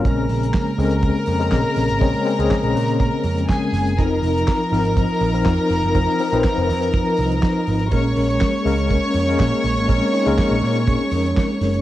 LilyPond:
<<
  \new Staff \with { instrumentName = "String section" } { \time 4/4 \key bes \minor \tempo 4 = 122 <bes' bes''>1~ | <bes' bes''>2. <aes' aes''>4 | <bes' bes''>1~ | <bes' bes''>1 |
<des'' des'''>1~ | <des'' des'''>1 | }
  \new Staff \with { instrumentName = "Tine electric piano" } { \time 4/4 \key bes \minor <aes c' des' bes'>4~ <aes c' des' bes'>16 r16 <aes c' des' a' bes'>4 r16 <aes c' des' bes'>4 r16 | <aes c' des' des''>8 <aes c' des' bes'>16 <aes c' des' aes'>4.~ <aes c' des' aes'>16 r4. | <f c' ees' a' bes'>4~ <f c' ees' a' bes'>16 r16 <f c' ees' bes'>4 r16 <f c' ees' bes'>4 r16 | <f c' ees' bes'>8 <f c' ees' bes'>16 <f c' ees' ces'' c''>4.~ <f c' ees' ces'' c''>16 r4. |
<aes bes des' bes'>4~ <aes bes des' bes'>16 r16 <aes bes des' bes'>4 r16 <aes bes des' bes'>4 r16 | <aes c' des' bes'>8 <aes c' des' ees'>16 <aes bes des' bes'>4.~ <aes bes des' bes'>16 r4. | }
  \new Staff \with { instrumentName = "Tonewheel organ" } { \time 4/4 \key bes \minor <des aes bes>1~ | <des aes bes>1 | <f ees' bes'>1~ | <f ees' bes'>1 |
<aes bes des'>1~ | <aes bes des'>1 | }
  \new Staff \with { instrumentName = "Picked electric bass" } { \clef bass \time 4/4 \key bes \minor bes,,8 bes,,8 r8 des,8. r16 f,8 bes,16 r16 bes,,16 aes,,16 | bes,,16 r8 des,16 r16 bes,,16 bes,8. r16 f,8 r8 ges,,8 | f,,8 f,,8 r8 aes,,8. r16 bes,,8 f,16 r16 f,,16 ges,,16 | f,,16 r8 bes,,16 r16 f,,16 f,8. r16 c,8 r8 aes,,8 |
bes,,8 bes,,8 r8 des,8. r16 f,8 bes,16 r16 bes,,16 aes,,16 | bes,,16 r8 des,16 r16 bes,,16 bes,8. r16 f,8 r8 ges,,8 | }
  \new DrumStaff \with { instrumentName = "Drums" } \drummode { \time 4/4 <hh bd>8 hho16 hh16 <hc hh bd sn>8 hho16 hh16 <hh bd>8 hho16 hh16 <hc hh bd sn>8 <hho sn>16 hh16 | <hh bd>8 hho16 hh16 <hc hh bd sn>8 hho16 hh16 <hh bd>8 hho16 hh16 <hc hh bd sn>8 <hho sn>16 hh16 | <hh bd>8 hho16 hh16 <hc hh bd sn>8 hho16 hh16 <hh bd>8 hho16 hh16 <hc hh bd sn>8 <hho sn>16 hh16 | <hh bd>8 hho16 hh16 <hc hh bd sn>8 hho16 hh16 <hh bd>8 hho16 hh16 <hc hh bd sn>8 hho16 hh16 |
<hh bd>8 hho16 hh16 <hc hh bd sn>8 hho16 hh16 <hh bd>8 hho16 hh16 <hc hh bd sn>8 <hho sn>16 hh16 | <hh bd>8 hho16 hh16 <hc hh bd sn>8 hho16 hh16 <hh bd>8 hho16 hh16 <hc hh bd sn>8 <hho sn>16 hh16 | }
>>